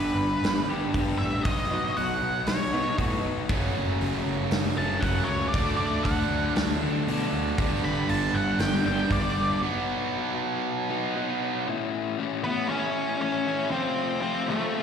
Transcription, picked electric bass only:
0.15 0.34 G1 medium
0.42 0.61 G1 medium
0.67 0.86 G1 medium
0.95 1.13 G1 medium
1.21 1.39 A1 medium
1.45 1.63 B1 medium
1.71 1.89 B1 medium
1.98 2.16 B1 medium
2.22 2.40 B1 medium
2.47 2.65 B1 medium
2.74 2.92 B2 medium
2.98 3.17 A2 medium
3.25 3.43 B1 medium
3.50 3.68 F#1 medium
3.77 3.95 F#1 medium
4.01 4.19 F#1 medium
4.26 4.44 F#1 medium
4.50 4.69 F#1 medium
4.78 4.96 F#1 medium
5.02 5.21 F#1 medium
5.28 5.46 C#2 medium
5.54 5.72 D2 medium
5.79 5.97 D2 medium
6.05 6.23 D2 medium
6.30 6.48 D2 medium
6.56 6.74 D2 medium
6.82 7.00 D3 medium
7.07 7.25 B2 medium
7.33 7.51 D2 medium
7.59 7.77 G1 medium
7.84 8.02 G1 medium
8.09 8.27 G1 medium
8.35 8.53 G1 loud
8.60 8.78 G1 medium
8.87 9.04 G1 medium
9.10 9.29 G1 medium
9.38 9.56 G1 medium

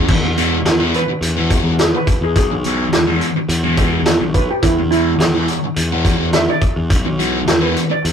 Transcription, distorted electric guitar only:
0.23 muted distorted electric guitar stroke medium
0.37 0.56 E2 medium
0.37 0.56 B2 medium
0.37 0.56 E3 medium
0.66 muted distorted electric guitar stroke soft
0.79 0.99 E2 medium
0.79 0.98 B2 medium
0.79 0.98 E3 medium
1.08 muted distorted electric guitar stroke soft
1.36 1.50 E2 medium
1.36 1.51 B2 medium
1.36 1.51 E3 medium
1.51 1.69 E2 medium
1.51 1.70 B2 medium
1.51 1.70 E3 medium
1.94 muted distorted electric guitar stroke medium
2.51 muted distorted electric guitar stroke soft
2.65 2.84 E2 medium
2.65 2.84 B2 medium
2.65 2.84 E3 medium
2.94 muted distorted electric guitar stroke soft
3.07 3.26 E2 medium
3.07 3.26 B2 medium
3.07 3.26 E3 medium
3.36 muted distorted electric guitar stroke medium
3.64 3.77 E2 medium
3.64 3.77 B2 medium
3.64 3.77 E3 medium
3.78 3.97 E2 medium
3.78 3.97 B2 medium
3.78 3.97 E3 medium
4.21 muted distorted electric guitar stroke medium
4.78 muted distorted electric guitar stroke medium
4.92 5.11 E2 medium
4.92 5.11 B2 medium
4.92 5.11 E3 medium
5.20 muted distorted electric guitar stroke medium
5.34 5.54 E2 medium
5.34 5.53 B2 medium
5.34 5.53 E3 medium
5.64 muted distorted electric guitar stroke soft
5.92 6.05 E2 medium
5.92 6.06 B2 medium
5.92 6.06 E3 medium
6.06 6.24 E2 medium
6.06 6.25 B2 medium
6.06 6.25 E3 medium
6.48 muted distorted electric guitar stroke medium
7.04 muted distorted electric guitar stroke medium
7.18 7.37 E2 medium
7.18 7.38 B2 medium
7.18 7.38 E3 medium
7.47 muted distorted electric guitar stroke soft
7.61 7.80 E2 medium
7.61 7.80 B2 medium
7.61 7.80 E3 medium
7.89 muted distorted electric guitar stroke soft

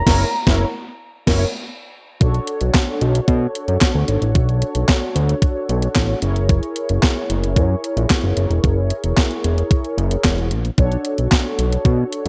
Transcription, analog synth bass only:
0.07 0.25 F#1 loud
0.47 0.65 F#1 loud
1.27 1.46 F#1 loud
2.21 2.40 B1 loud
2.61 2.71 B1 medium
3.01 3.20 B1 medium
3.28 3.47 B2 loud
3.68 3.78 F#2 medium
3.95 4.04 D2 loud
4.08 4.18 G#1 medium
4.22 4.37 A1 medium
4.35 4.64 B1 loud
4.75 4.85 B1 medium
5.15 5.35 D2 medium
5.69 5.88 B1 medium
5.96 6.15 A1 medium
6.23 6.61 F#1 medium
6.90 6.99 F#1 loud
7.30 7.58 F#1 medium
7.56 7.76 F#2 loud
7.97 8.06 A#1 medium
8.24 8.33 F#1 medium
8.37 8.47 F#1 medium
8.50 8.60 E1 medium
8.64 8.92 F#1 loud
9.04 9.14 E1 medium
9.44 9.63 E1 medium
9.98 10.17 F#1 medium
10.24 10.53 E1 loud
10.52 10.70 A#1 medium
10.78 10.97 B1 loud
11.19 11.28 B1 medium
11.59 11.78 B1 medium
11.85 12.04 B2 loud

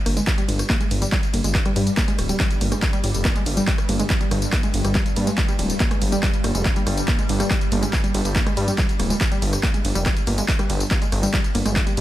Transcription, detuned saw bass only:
0.06 0.20 G1 loud
0.48 0.62 G1 medium
0.91 1.05 G1 medium
1.33 1.40 G1 medium
1.44 1.58 G1 loud
1.76 1.90 G2 loud
2.19 2.32 D1 medium
2.61 2.75 G1 medium
3.04 3.11 G1 medium
3.14 3.28 F1 loud
3.46 3.60 G1 loud
3.89 4.03 G1 medium
4.31 4.45 G1 loud
4.74 4.81 G1 medium
4.85 4.98 G1 medium
5.16 5.30 G2 loud
5.59 5.73 D1 medium
6.02 6.15 G1 medium
6.44 6.51 G1 loud
6.55 6.69 F1 medium
6.87 7.00 G1 loud
7.29 7.43 G1 medium
7.72 7.86 G1 medium
8.14 8.21 G1 medium
8.25 8.39 G1 medium
8.57 8.71 G2 loud
9.00 9.13 D1 medium
9.42 9.56 G1 medium
9.85 9.92 G1 medium
9.95 10.09 F1 loud
10.27 10.41 G1 loud
10.70 10.84 G1 medium
11.12 11.26 G1 loud
11.55 11.62 G1 medium
11.65 11.79 G1 loud
11.97 12.01 G2 loud

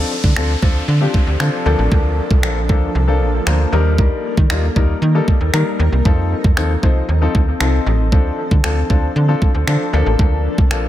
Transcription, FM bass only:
0.24 0.33 D3 loud
0.36 0.56 D2 medium
0.62 0.82 D2 medium
0.88 1.07 D3 loud
1.27 1.37 D2 medium
1.40 1.50 D3 loud
1.66 1.75 D2 loud
1.79 1.88 A1 medium
1.92 2.21 D2 loud
2.31 2.45 C2 medium
2.43 2.71 A#1 medium
2.69 2.89 D2 loud
2.95 3.22 C2 medium
3.21 3.40 A#1 medium
3.47 3.66 D2 medium
3.73 4.11 D#2 medium
4.37 4.47 D#3 medium
4.50 4.69 D#2 medium
4.76 4.95 D#2 medium
5.02 5.21 D#3 loud
5.41 5.50 D#2 medium
5.54 5.63 D#3 loud
5.79 5.89 D#2 loud
5.92 6.02 C2 medium
6.05 6.34 F2 loud
6.44 6.54 F2 medium
6.57 6.76 D#2 medium
6.83 7.02 C2 medium
7.09 7.28 D#2 medium
7.35 7.54 D2 loud
7.61 7.80 C2 medium
7.86 8.14 A1 loud
8.12 8.32 D2 loud
8.51 8.61 D3 medium
8.64 8.83 D2 medium
8.90 9.09 D2 medium
9.16 9.35 D3 medium
9.55 9.64 D2 medium
9.67 9.77 D3 loud
9.93 10.03 D2 loud
10.06 10.16 A1 medium
10.19 10.48 D2 loud
10.58 10.73 C2 medium
10.71 10.88 A#1 medium

